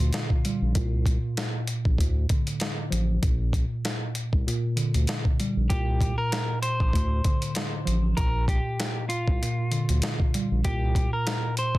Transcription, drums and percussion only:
0.00 closed hi-hat medium
0.13 snare loud
0.13 closed hi-hat medium
0.30 kick medium
0.45 closed hi-hat medium
0.75 kick loud
0.75 closed hi-hat medium
1.06 kick medium
1.06 closed hi-hat medium
1.37 snare loud
1.37 closed hi-hat medium
1.67 closed hi-hat medium
1.85 kick medium
1.98 kick loud
1.98 closed hi-hat medium
2.29 kick medium
2.29 closed hi-hat medium
2.47 closed hi-hat medium
2.60 snare loud
2.60 closed hi-hat medium
2.92 closed hi-hat medium
3.23 kick loud
3.23 closed hi-hat medium
3.53 kick medium
3.53 closed hi-hat medium
3.85 snare loud
3.85 closed hi-hat medium
4.15 closed hi-hat medium
4.33 kick medium
4.48 closed hi-hat medium
4.77 closed hi-hat medium
4.94 closed hi-hat medium
5.07 snare loud
5.07 closed hi-hat medium
5.25 kick medium
5.40 closed hi-hat medium
5.70 kick loud
5.70 closed hi-hat medium
6.01 kick medium
6.01 closed hi-hat medium
6.32 snare loud
6.32 closed hi-hat medium
6.63 closed hi-hat medium
6.80 kick medium
6.93 kick medium
6.93 closed hi-hat medium
7.24 kick medium
7.24 closed hi-hat medium
7.42 closed hi-hat medium
7.55 snare loud
7.55 closed hi-hat medium
7.87 closed hi-hat medium
8.17 kick loud
8.17 closed hi-hat medium
8.48 kick medium
8.48 closed hi-hat medium
8.80 snare loud
8.80 closed hi-hat medium
9.10 closed hi-hat medium
9.28 kick medium
9.43 closed hi-hat medium
9.72 closed hi-hat medium
9.89 closed hi-hat medium
10.02 snare loud
10.02 closed hi-hat medium
10.20 kick medium
10.34 closed hi-hat medium
10.64 kick loud
10.64 closed hi-hat medium
10.95 kick medium
10.95 closed hi-hat medium
11.27 snare loud
11.27 closed hi-hat medium
11.57 closed hi-hat medium
11.75 kick medium

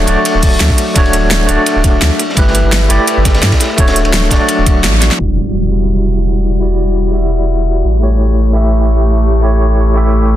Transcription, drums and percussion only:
0.07 closed hi-hat medium
0.07 ride medium
0.25 closed hi-hat medium
0.25 ride medium
0.42 kick loud
0.42 closed hi-hat medium
0.42 open hi-hat medium
0.60 snare loud
0.60 closed hi-hat medium
0.60 ride medium
0.70 kick medium
0.78 closed hi-hat medium
0.78 ride medium
0.95 kick loud
0.95 closed hi-hat medium
0.95 ride medium
1.06 ride soft
1.13 closed hi-hat medium
1.13 ride medium
1.31 snare loud
1.31 closed hi-hat medium
1.31 ride medium
1.48 closed hi-hat medium
1.48 ride medium
1.66 closed hi-hat medium
1.66 ride medium
1.84 kick medium
1.84 closed hi-hat medium
1.84 ride medium
2.01 snare loud
2.01 closed hi-hat medium
2.01 ride loud
2.19 closed hi-hat medium
2.19 ride medium
2.29 snare soft
2.37 kick loud
2.37 closed hi-hat medium
2.37 ride medium
2.48 snare soft
2.55 closed hi-hat medium
2.55 ride medium
2.72 snare loud
2.72 closed hi-hat medium
2.72 ride medium
2.90 closed hi-hat medium
2.90 ride medium
3.07 closed hi-hat medium
3.07 ride medium
3.25 kick medium
3.25 snare medium
3.25 closed hi-hat loud
3.25 ride medium
3.34 snare loud
3.34 ride medium
3.42 snare loud
3.42 closed hi-hat medium
3.42 ride medium
3.52 kick medium
3.52 snare loud
3.52 ride medium
3.60 snare medium
3.60 closed hi-hat loud
3.60 ride medium
3.78 kick loud
3.78 closed hi-hat medium
3.78 ride medium
3.88 snare loud
3.88 ride medium
3.96 closed hi-hat medium
4.05 ride medium
4.13 snare loud
4.13 closed hi-hat medium
4.13 ride medium
4.31 kick medium
4.31 snare loud
4.31 closed hi-hat medium
4.31 ride medium
4.48 closed hi-hat medium
4.48 ride medium
4.66 kick loud
4.66 closed hi-hat loud
4.66 ride medium
4.84 snare loud
4.84 closed hi-hat medium
4.84 ride medium
4.94 snare soft
5.02 snare medium
5.02 closed hi-hat loud
5.02 ride medium
5.11 snare medium

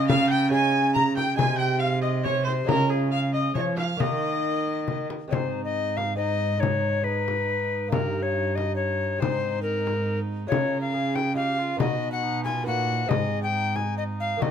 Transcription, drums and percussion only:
0.09 frame drum medium
0.96 frame drum medium
1.17 frame drum medium
1.39 frame drum medium
2.26 frame drum medium
2.47 frame drum medium
2.69 frame drum medium
3.55 frame drum medium
3.77 frame drum medium
4.00 frame drum medium
4.88 frame drum medium
5.10 frame drum medium
5.32 frame drum medium
5.98 frame drum soft
6.63 frame drum medium
7.28 frame drum soft
7.92 frame drum medium
8.58 frame drum soft
9.22 frame drum medium
9.87 frame drum soft
10.52 frame drum medium
11.16 frame drum medium
11.80 frame drum medium
12.46 frame drum soft
13.11 frame drum medium
13.76 frame drum soft
14.42 frame drum medium

